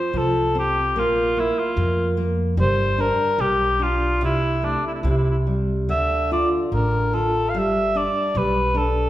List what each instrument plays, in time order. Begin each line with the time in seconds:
Already playing: nylon-string guitar F3 C4, cor anglais C5
0.13 upright bass C2, nylon-string guitar F3
0.18 cor anglais A4
0.55 nylon-string guitar C4
0.59 cor anglais G4
0.95 upright bass A#1, nylon-string guitar A#3, cor anglais F4
1.37 nylon-string guitar A#3, cor anglais E4
1.59 cor anglais F4
1.77 upright bass F2, nylon-string guitar A#3
2.17 nylon-string guitar A#3
2.57 upright bass G1, nylon-string guitar G3, cor anglais C5
2.98 nylon-string guitar D4, cor anglais A#4
3.38 upright bass B1, nylon-string guitar G3, cor anglais G4
3.79 nylon-string guitar D4, cor anglais F4
4.21 upright bass C2, nylon-string guitar C3, cor anglais E4
4.62 nylon-string guitar A3, cor anglais D4
4.87 cor anglais E4
4.94 cor anglais E4
5.02 upright bass C2, nylon-string guitar C3, cor anglais E4
5.10 cor anglais E4
5.17 cor anglais E4
5.23 cor anglais E4
5.30 cor anglais E4
5.47 nylon-string guitar G3
5.88 upright bass D2, nylon-string guitar D3, cor anglais E5
6.31 nylon-string guitar F4, cor anglais D5
6.72 upright bass A1, nylon-string guitar D3, cor anglais A#4
7.13 nylon-string guitar F4, cor anglais A4
7.50 cor anglais F5
7.54 upright bass G1, nylon-string guitar G3
7.58 cor anglais E5
7.95 nylon-string guitar D4, cor anglais D5
8.35 upright bass B1, nylon-string guitar G3, cor anglais B4
8.74 nylon-string guitar D4, cor anglais A4